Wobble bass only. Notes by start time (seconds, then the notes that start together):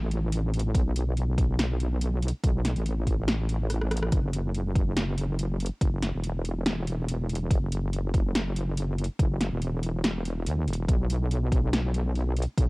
Already playing: A1
0.74 B1
2.43 B1
2.76 A1
4.12 F#1
5.81 F#1
6.14 E1
7.50 F#1
9.19 F#1
9.52 E1
10.46 D#2
10.67 E1
10.88 B1
12.57 B1